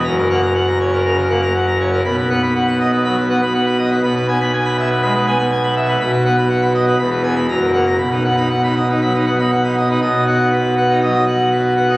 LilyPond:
<<
  \new Staff \with { instrumentName = "Pipe organ" } { \time 4/4 \key b \major \tempo 4 = 121 ais''16 ais'16 fis''16 ais''16 fis''16 ais''16 cis''16 ais'16 ais''16 ais'16 fis''16 ais''16 fis''16 ais''16 cis''16 ais'16 | b''16 b'16 fis''16 b''16 fis''16 b''16 dis''16 b'16 b''16 b'16 fis''16 b''16 fis''16 b''16 dis''16 b'16 | b''16 b'16 gis''16 b''16 gis''16 b''16 e''16 b'16 b''16 b'16 gis''16 b''16 gis''16 b''16 e''16 b'16 | b''16 b'16 fis''16 b''16 fis''16 b''16 dis''16 b'16 b''16 b'16 gis''16 b''16 ais''16 ais'16 fis''16 ais''16 |
b''16 b'16 fis''16 b''16 fis''16 b''16 dis''16 b'16 b''16 b'16 fis''16 b''16 fis''16 b''16 dis''16 b'16 | dis''8 fis''8 b'8 fis''8 dis''8 fis''8 b'8 fis''8 | }
  \new Staff \with { instrumentName = "Pipe organ" } { \time 4/4 \key b \major << { fis,8 ais16 r4 r16 cis16 r16 ais16 r4 r16 | b,8 b16 r4 r16 fis16 r16 b16 r4 r16 | b,8 b16 r4 r16 gis16 r16 b16 r4 r16 | b,8 b16 r4 r16 e,8 b16 r16 fis,8 ais16 r16 |
b,16 dis'16 b16 dis'16 r16 dis'16 r16 dis'16 fis16 dis'16 b16 dis'16 r16 dis'16 r16 dis'16 | b,4.~ b,16 dis'16 fis16 r4. dis'16 | } \\ { fis,,1 | b,,1 | b,,1 | b,,2 e,,4 fis,,4 |
b,,1 | b,,1 | } >> }
>>